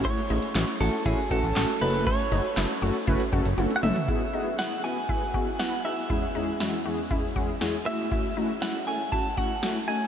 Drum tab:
HH |xxxxxxoxxxxxxxox|xxxxxxxxxxxxxxox|----------------|----------------|
CP |----x-------x---|----x-----------|----------------|----------------|
SD |----o-------o---|----o-----------|----o-------o---|----o-------o---|
T1 |----------------|------------o---|----------------|----------------|
T2 |----------------|--------------o-|----------------|----------------|
FT |----------------|---------------o|----------------|----------------|
BD |o-------o-o-----|o-------o-o-----|o-------o-o-----|o-------o-o-----|

HH |----------------|
CP |----------------|
SD |----o-------o---|
T1 |----------------|
T2 |----------------|
FT |----------------|
BD |o-------o-o-----|